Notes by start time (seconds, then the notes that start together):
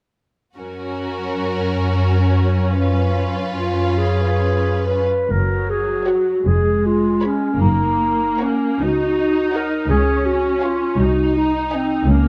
0.57 F#2 C#4 F#4 A#4
2.81 F4 B4
3.56 F4
3.98 G#4
4.86 B4
5.28 F#1 F#2 F#3 A#4
5.70 G#4
6.06 F#4 C#5 F#5
6.45 F1 F2 G#3 G#4
6.86 F4
7.21 C#5 B5
7.26 C#4
7.58 F#1 F#2 A#3 D#4
8.38 C#5 F#5 A#5
8.42 C#4
8.79 C#2 D#4
8.84 F#4
9.54 A#4 C#5 F#5 A#5
9.88 C#2 C#4 G#4
10.26 F#4
10.61 F4 C#5 F5 G#5
10.97 C2 D#4 F#4
11.38 D#4
11.71 C4 D#5 G#5
12.06 C#2 A#3
12.11 C#4